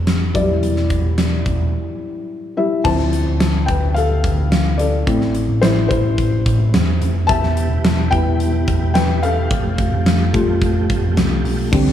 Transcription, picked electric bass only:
0.00 0.31 F1 medium
0.35 0.61 E1 medium
0.62 1.42 E1 medium
1.46 1.72 E1 medium
2.85 3.24 D2 medium
3.26 3.65 D2 medium
3.68 4.20 D2 medium
4.24 5.03 D2 medium
5.07 5.46 A1 medium
5.49 5.87 A1 medium
5.91 6.42 A1 medium
6.46 6.72 A1 medium
6.74 7.00 E2 medium
7.01 7.27 F1 medium
7.29 7.68 E1 loud
7.70 8.09 E1 loud
8.12 8.64 E1 medium
8.68 9.47 E1 medium
9.50 9.89 F1 loud
9.92 10.31 F1 medium
10.34 10.86 F1 loud
10.90 11.15 F1 medium
11.17 11.43 C2 medium
11.44 11.70 B1 medium
11.73 11.93 C2 loud

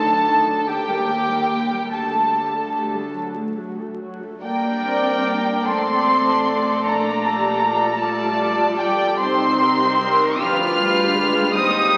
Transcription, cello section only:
0.00 0.67 D2 medium
0.68 1.92 D#2 medium
1.92 4.23 D2 medium
4.42 5.64 G3 medium
5.68 6.84 C4 medium
6.84 7.98 A#3 medium
7.98 8.77 A3 medium
8.79 9.20 G3 medium
9.19 10.38 C4 medium
10.41 11.54 F4 loud
11.54 11.97 D#4 loud

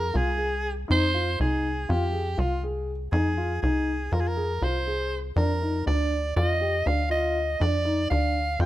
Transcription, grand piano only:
0.14 0.27 F4 medium
0.38 0.64 G#4 medium
0.88 1.01 D#4 medium
1.14 1.27 F4 soft
1.39 1.65 D#4 medium
1.89 2.02 F4 medium
2.12 2.26 G#4 medium
2.37 2.51 F4 soft
2.63 2.89 G#4 medium
3.12 3.25 D#4 medium
3.37 3.50 F4 medium
3.63 3.89 D#4 medium
4.12 4.25 F4 medium
4.37 4.50 G#4 medium
4.62 4.75 F4 soft
4.87 5.13 G#4 soft
5.36 5.49 D4 medium
5.62 5.75 D#4 soft
5.86 6.12 D4 medium
6.36 6.49 F4 medium
6.61 6.74 G4 medium
6.86 6.99 D4 medium
7.10 7.36 F4 medium
7.60 7.73 D4 medium
7.85 7.98 D#4 medium
8.10 8.36 D4 medium
8.60 8.66 F4 medium

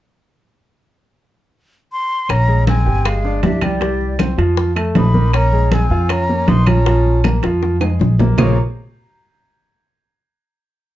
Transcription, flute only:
1.92 2.31 C6 medium
2.30 2.67 A#5 loud
2.68 3.08 G#5 medium
3.06 3.43 F5 medium
3.44 3.65 E5 medium
3.64 4.20 D5 medium
4.98 5.32 B5 medium
5.36 5.75 A#5 loud
5.74 6.13 G#5 medium
6.12 6.51 A#5 loud
6.49 6.70 C6 medium
6.68 7.25 A#5 medium
8.40 8.57 A#5 medium

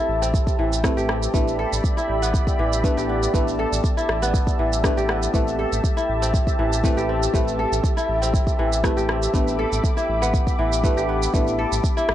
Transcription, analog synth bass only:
0.09 0.40 A1 loud
0.59 0.90 A1 medium
0.97 1.28 A1 loud
1.34 1.65 A1 loud
1.72 1.80 A1 medium
2.09 2.40 A1 loud
2.59 2.90 A1 medium
2.97 3.28 A1 loud
3.34 3.65 A1 loud
3.72 3.80 A1 medium
4.09 4.40 A1 loud
4.59 4.90 A1 medium
4.97 5.28 A1 loud
5.34 5.65 A1 loud
5.72 5.80 A1 medium
6.09 6.40 A1 loud
6.59 6.90 A1 medium
6.97 7.28 A1 loud
7.34 7.65 A1 loud
7.72 7.80 A1 loud
8.09 8.40 A1 loud
8.59 8.90 A1 medium
8.97 9.28 A1 medium
9.34 9.65 A1 loud
9.72 9.80 A1 loud
10.09 10.40 A1 loud
10.59 10.90 A1 medium
10.97 11.28 A1 loud
11.34 11.65 A1 loud
11.72 11.80 A1 medium
12.09 12.15 A1 loud

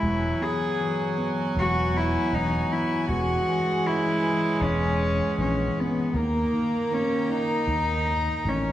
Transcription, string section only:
0.00 3.06 F#4 medium
0.00 3.03 B4 medium
0.00 6.10 F#5 medium
0.00 6.10 G#5 loud
3.07 6.10 C#4 medium
3.07 6.10 G#4 medium
6.13 8.72 D#4 medium
6.13 8.72 A#4 medium
6.13 8.72 G5 medium
6.13 8.72 A#5 loud

